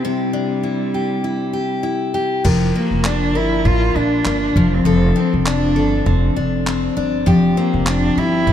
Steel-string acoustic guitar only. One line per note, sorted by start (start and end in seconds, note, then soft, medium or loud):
0.00 0.33 D4 medium
0.00 0.62 E4 soft
0.05 2.46 C3 medium
0.05 0.93 G4 medium
0.33 2.75 D4 medium
0.63 1.23 E4 medium
0.94 1.52 G4 soft
1.24 1.82 E4 soft
1.53 2.13 G4 medium
1.83 2.51 E4 medium
2.14 2.45 G4 medium
2.44 4.57 F3 medium
2.44 3.34 A#4 medium
2.75 3.64 A#3 medium
3.06 3.95 D4 medium
3.35 4.63 A#4 medium
3.65 4.25 A#3 medium
3.96 5.19 D4 soft
4.26 4.63 A#3 medium
4.57 4.85 F3 medium
4.85 7.26 F3 medium
4.85 5.75 A4 medium
5.16 6.06 C4 medium
5.46 6.35 D4 soft
5.76 7.27 A4 medium
6.06 6.66 C4 medium
6.36 6.95 D4 medium
6.66 7.57 C4 medium
6.97 7.34 D4 medium
7.26 8.53 F3 medium
7.26 8.17 G4 medium
7.57 8.46 C4 medium
8.18 8.53 G4 medium
8.47 8.53 C4 medium